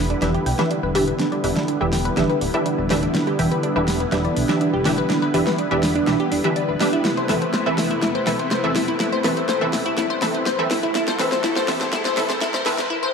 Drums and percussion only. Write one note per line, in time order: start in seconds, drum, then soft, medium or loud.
0.10 closed hi-hat medium
0.22 snare soft
0.22 closed hi-hat medium
0.34 closed hi-hat soft
0.46 open hi-hat loud
0.59 snare soft
0.59 closed hi-hat medium
0.71 closed hi-hat medium
0.95 open hi-hat loud
1.08 closed hi-hat medium
1.19 snare medium
1.19 closed hi-hat medium
1.32 closed hi-hat soft
1.44 open hi-hat loud
1.56 snare soft
1.56 closed hi-hat medium
1.68 closed hi-hat medium
1.93 snare medium
1.93 open hi-hat loud
2.05 closed hi-hat medium
2.17 snare medium
2.17 closed hi-hat medium
2.30 closed hi-hat soft
2.41 open hi-hat loud
2.54 closed hi-hat medium
2.66 closed hi-hat medium
2.90 snare medium
2.90 open hi-hat loud
3.03 closed hi-hat medium
3.15 snare medium
3.15 closed hi-hat medium
3.27 closed hi-hat soft
3.39 open hi-hat loud
3.52 closed hi-hat medium
3.63 closed hi-hat medium
3.88 snare medium
3.88 open hi-hat loud
4.00 closed hi-hat soft
4.12 snare medium
4.12 closed hi-hat medium
4.25 closed hi-hat soft
4.37 open hi-hat loud
4.49 snare medium
4.49 closed hi-hat medium
4.61 closed hi-hat medium
4.85 snare medium
4.85 open hi-hat loud
4.98 closed hi-hat soft
5.10 snare medium
5.10 closed hi-hat medium
5.22 closed hi-hat soft
5.34 open hi-hat loud
5.47 snare medium
5.47 closed hi-hat medium
5.58 closed hi-hat medium
5.71 closed hi-hat soft
5.83 snare medium
5.83 open hi-hat loud
5.95 closed hi-hat soft
6.07 snare medium
6.07 closed hi-hat medium
6.20 closed hi-hat soft
6.32 open hi-hat loud
6.44 closed hi-hat medium
6.56 closed hi-hat medium
6.80 snare medium
6.80 open hi-hat loud
6.93 closed hi-hat soft
7.05 snare medium
7.05 closed hi-hat medium
7.17 closed hi-hat soft
7.29 snare medium
7.29 open hi-hat loud
7.42 closed hi-hat medium
7.54 snare medium
7.54 closed hi-hat medium
7.78 snare medium
7.78 open hi-hat loud
7.91 closed hi-hat soft
8.02 snare medium
8.02 closed hi-hat medium
8.15 closed hi-hat soft
8.27 snare medium
8.27 open hi-hat loud
8.39 closed hi-hat medium
8.51 snare medium
8.51 closed hi-hat medium
8.76 snare medium
8.76 open hi-hat loud
8.88 closed hi-hat medium
9.00 snare medium
9.00 closed hi-hat medium
9.13 closed hi-hat soft
9.24 snare medium
9.24 open hi-hat loud
9.37 closed hi-hat medium
9.49 snare medium
9.49 closed hi-hat medium
9.73 snare medium
9.73 open hi-hat loud
9.86 closed hi-hat medium
9.97 snare medium
9.97 closed hi-hat medium
10.10 closed hi-hat soft
10.22 snare medium
10.22 open hi-hat loud
10.34 closed hi-hat medium
10.46 snare medium
10.46 closed hi-hat medium
10.71 snare medium
10.71 open hi-hat loud
10.83 closed hi-hat medium
10.95 snare loud
10.95 closed hi-hat medium
11.08 snare medium
11.08 closed hi-hat soft
11.19 snare medium
11.19 open hi-hat loud
11.32 snare medium
11.32 closed hi-hat medium
11.44 snare medium
11.44 closed hi-hat medium
11.56 snare medium
11.68 snare loud
11.68 open hi-hat loud
11.81 snare medium
11.81 closed hi-hat medium
11.93 snare loud
11.93 closed hi-hat medium
12.05 snare medium
12.05 closed hi-hat soft
12.17 snare loud
12.17 open hi-hat loud
12.30 snare medium
12.30 closed hi-hat medium
12.41 snare loud
12.41 closed hi-hat medium
12.54 snare medium
12.66 snare loud
12.66 open hi-hat loud
12.78 snare medium
12.78 closed hi-hat medium